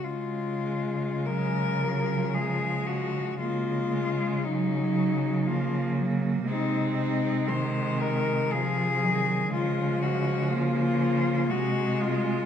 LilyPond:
<<
  \new Staff \with { instrumentName = "Cello" } { \time 3/4 \key des \major \tempo 4 = 59 f'4 bes'4 aes'8 ges'8 | f'4 ees'4 f'8 r8 | ees'8 ees'8 c''8 bes'8 aes'4 | f'8 ges'8 f'4 ges'8 f'8 | }
  \new Staff \with { instrumentName = "Cello" } { \clef bass \time 3/4 \key des \major r4 aes8 ges8 aes4 | bes8 aes8 ges4 bes4 | c'4 aes4 f8 ees8 | f2 aes4 | }
  \new Staff \with { instrumentName = "Cello" } { \clef bass \time 3/4 \key des \major aes4 ges8 f4. | aes4 ges4 f8 ges8 | aes4 ees4 f8 ges8 | aes4 bes4 aes4 | }
  \new Staff \with { instrumentName = "Cello" } { \clef bass \time 3/4 \key des \major des2. | des2. | c2. | des2 c4 | }
>>